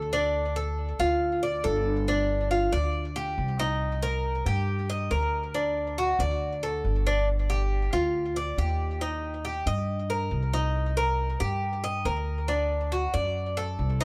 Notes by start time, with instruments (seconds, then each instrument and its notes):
Already playing: upright bass D2, cuban tres A4
0.13 cuban tres D4
0.56 cuban tres A4
0.99 upright bass D2, cuban tres F4
1.43 cuban tres D5
1.64 upright bass G1, cuban tres A4
2.08 cuban tres D4
2.51 cuban tres F4
2.73 upright bass D2, cuban tres D5
3.16 cuban tres G4
3.38 upright bass C2
3.59 cuban tres D#4
4.02 cuban tres A#4
4.46 upright bass G2, cuban tres G4
4.90 cuban tres D#5
5.11 upright bass D2, cuban tres A#4
5.54 cuban tres D4
5.98 cuban tres F#4
6.19 upright bass D2, cuban tres D5
6.63 cuban tres A4
6.84 upright bass G1
7.07 cuban tres D4
7.50 cuban tres G4
7.93 upright bass D2, cuban tres F4
8.36 cuban tres D5
8.58 upright bass D#2, cuban tres G4
9.01 cuban tres D#4
9.45 cuban tres G4
9.66 upright bass G2, cuban tres D#5
10.10 cuban tres A#4
10.31 upright bass C2
10.54 cuban tres D#4
10.97 cuban tres A#4
11.40 upright bass G2, cuban tres G4
11.84 cuban tres D#5
12.05 upright bass D2, cuban tres A#4
12.48 cuban tres D4
12.92 cuban tres F#4
13.14 upright bass F#2, cuban tres D5
13.57 cuban tres A4
13.79 upright bass C2
14.01 cuban tres D#4